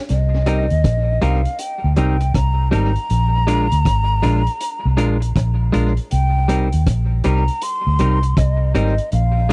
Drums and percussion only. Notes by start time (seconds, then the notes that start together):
0.09 closed hi-hat
0.46 closed hi-hat
0.70 closed hi-hat
0.84 kick, cross-stick, closed hi-hat
1.22 closed hi-hat
1.45 closed hi-hat
1.59 closed hi-hat
1.96 closed hi-hat
2.21 closed hi-hat
2.34 kick, cross-stick, closed hi-hat
2.72 closed hi-hat
2.96 closed hi-hat
3.10 closed hi-hat
3.48 closed hi-hat
3.72 closed hi-hat
3.85 kick, cross-stick, closed hi-hat
4.23 closed hi-hat
4.47 closed hi-hat
4.61 closed hi-hat
4.98 closed hi-hat
5.22 closed hi-hat
5.36 kick, cross-stick, closed hi-hat
5.74 closed hi-hat
5.97 closed hi-hat
6.11 closed hi-hat
6.49 closed hi-hat
6.72 closed hi-hat
6.87 kick, cross-stick, closed hi-hat
7.24 closed hi-hat
7.48 closed hi-hat
7.62 closed hi-hat
7.99 closed hi-hat
8.23 closed hi-hat
8.37 kick, cross-stick, closed hi-hat
8.75 closed hi-hat
8.98 closed hi-hat
9.12 closed hi-hat